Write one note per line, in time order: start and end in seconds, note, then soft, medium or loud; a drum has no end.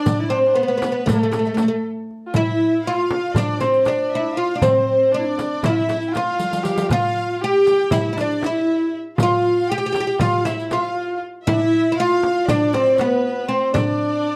0.00 0.21 D4 medium
0.00 0.30 D4 medium
0.00 0.28 D5 medium
0.06 riq medium
0.06 frame drum medium
0.06 darbuka dum medium
0.20 0.31 E4 medium
0.29 0.57 C4 medium
0.29 0.40 D4 medium
0.29 0.57 C5 medium
0.38 0.48 C4 medium
0.46 0.56 D4 medium
0.54 1.09 B3 medium
0.54 0.62 B3 medium
0.54 0.70 C5 medium
0.63 0.67 B3 medium
0.68 0.76 B3 medium
0.68 1.08 B4 medium
0.78 0.83 B3 medium
0.82 0.91 B3 medium
0.82 riq soft
0.82 darbuka tek medium
0.82 frame drum medium
0.92 1.01 B3 medium
1.06 1.12 A3 medium
1.06 1.22 A#3 medium
1.06 1.84 A4 medium
1.06 riq medium
1.06 frame drum medium
1.06 darbuka dum medium
1.13 1.21 A3 soft
1.22 1.84 A3 medium
1.22 1.30 A3 medium
1.32 1.38 A3 soft
1.32 riq medium
1.32 darbuka tek medium
1.32 frame drum medium
1.39 1.45 A3 soft
1.45 1.53 A3 soft
1.45 riq soft
1.54 1.60 A3 soft
1.54 riq soft
1.54 frame drum medium
1.59 1.67 A3 soft
1.59 darbuka tek medium
1.68 1.75 A3 medium
2.11 darbuka ka soft
2.27 2.36 F4 medium
2.34 2.85 E4 medium
2.34 2.87 E4 loud
2.34 2.82 E5 medium
2.34 riq medium
2.34 frame drum medium
2.34 darbuka dum medium
2.85 2.97 E4 medium
2.85 3.38 F4 medium
2.85 3.36 F5 medium
2.97 3.37 F4 medium
3.10 darbuka tek medium
3.10 frame drum medium
3.34 3.61 D4 medium
3.34 3.60 D5 medium
3.34 riq medium
3.34 darbuka dum medium
3.34 frame drum medium
3.38 3.60 D4 medium
3.60 3.86 C4 medium
3.60 3.87 C4 medium
3.60 3.86 C5 medium
3.60 riq soft
3.60 frame drum medium
3.74 riq soft
3.85 4.39 D4 medium
3.85 4.13 D4 medium
3.85 4.11 D5 medium
3.85 riq soft
3.85 darbuka tek medium
3.85 frame drum medium
4.12 4.37 E4 medium
4.12 4.37 E5 medium
4.36 4.55 F4 medium
4.36 4.60 F4 medium
4.36 4.62 F5 medium
4.36 darbuka ka soft
4.55 4.62 D4 medium
4.60 4.85 C4 medium
4.60 5.10 C4 medium
4.60 5.13 C5 medium
4.60 riq medium
4.60 darbuka dum loud
4.60 frame drum medium
4.86 5.13 C4 medium
5.11 5.20 D4 medium
5.11 5.65 D4 medium
5.11 5.64 D5 medium
5.11 darbuka ka soft
5.19 5.26 E4 medium
5.25 5.65 D4 medium
5.38 riq soft
5.38 darbuka tek medium
5.38 frame drum medium
5.63 5.69 E4 medium
5.63 6.12 E4 medium
5.63 6.08 E5 medium
5.63 riq medium
5.63 darbuka dum medium
5.63 frame drum medium
5.68 5.77 F4 medium
5.76 5.88 E4 medium
5.89 6.13 E4 medium
5.89 riq soft
5.89 darbuka tek medium
5.89 frame drum medium
6.02 riq soft
6.09 6.65 F4 medium
6.09 6.15 G5 medium
6.14 6.91 F4 medium
6.14 6.90 F5 medium
6.14 riq soft
6.14 darbuka tek medium
6.14 frame drum medium
6.39 riq medium
6.39 darbuka tek medium
6.51 riq medium
6.51 darbuka ka medium
6.63 6.90 G4 medium
6.63 riq medium
6.63 darbuka tek medium
6.76 riq medium
6.76 darbuka ka medium
6.89 7.43 F4 medium
6.89 7.44 F4 loud
6.89 7.38 F5 medium
6.89 riq medium
6.89 darbuka dum medium
6.89 frame drum medium
7.41 7.92 G4 medium
7.41 7.91 G4 medium
7.41 7.93 G5 medium
7.66 riq soft
7.66 darbuka tek medium
7.66 frame drum medium
7.91 8.18 E4 medium
7.91 8.11 E4 medium
7.91 8.18 E5 medium
7.91 riq medium
7.91 frame drum medium
7.91 darbuka dum medium
8.13 8.44 D4 medium
8.13 8.18 E4 medium
8.17 8.45 D4 medium
8.17 8.41 D5 medium
8.17 riq soft
8.17 darbuka tek medium
8.17 frame drum medium
8.31 riq soft
8.43 8.93 E4 medium
8.43 8.92 E4 medium
8.43 8.94 E5 medium
8.43 riq soft
8.43 darbuka tek medium
8.43 frame drum medium
8.94 darbuka ka soft
9.17 9.71 F4 medium
9.17 9.66 F5 medium
9.17 riq medium
9.17 frame drum medium
9.17 darbuka dum medium
9.23 9.71 F4 loud
9.69 10.21 G4 medium
9.69 9.77 G4 loud
9.69 10.20 G5 loud
9.78 9.85 G4 medium
9.86 9.91 G4 medium
9.92 9.99 G4 medium
9.92 riq soft
9.92 darbuka tek medium
9.92 frame drum medium
10.00 10.06 G4 medium
10.07 10.15 G4 medium
10.19 10.46 F4 medium
10.19 10.44 F4 medium
10.19 10.43 F5 medium
10.19 riq medium
10.19 frame drum medium
10.19 darbuka dum medium
10.44 10.73 E4 medium
10.44 10.71 E4 medium
10.44 10.71 E5 medium
10.44 riq soft
10.44 darbuka tek medium
10.44 frame drum medium
10.59 riq soft
10.71 10.95 F4 medium
10.71 11.19 F4 medium
10.71 10.83 E5 medium
10.71 riq soft
10.71 darbuka tek medium
10.71 frame drum medium
10.83 11.18 F5 medium
10.96 11.19 F4 medium
11.23 darbuka ka soft
11.45 11.55 E4 medium
11.45 11.88 E4 loud
11.45 11.93 E5 medium
11.45 riq medium
11.45 darbuka dum medium
11.45 frame drum medium
11.53 11.62 D4 medium
11.60 11.96 E4 medium
11.92 11.98 E4 medium
11.97 12.50 F4 medium
11.97 12.49 F4 loud
11.97 12.48 F5 medium
12.23 darbuka tek medium
12.23 frame drum medium
12.47 12.75 D4 medium
12.47 12.74 D4 loud
12.47 12.98 D5 medium
12.47 riq medium
12.47 frame drum medium
12.47 darbuka dum medium
12.73 13.02 C4 medium
12.73 12.98 C4 medium
12.73 riq soft
12.73 darbuka tek medium
12.73 frame drum medium
12.86 riq soft
12.98 13.50 B3 medium
12.98 13.52 B3 medium
12.98 13.50 B4 medium
12.98 riq soft
12.98 darbuka tek medium
12.98 frame drum medium
13.49 13.74 C4 medium
13.49 13.76 C5 medium
13.49 darbuka ka soft
13.74 14.36 D4 medium
13.74 14.36 D5 medium
13.74 riq medium
13.74 frame drum medium
13.74 darbuka dum medium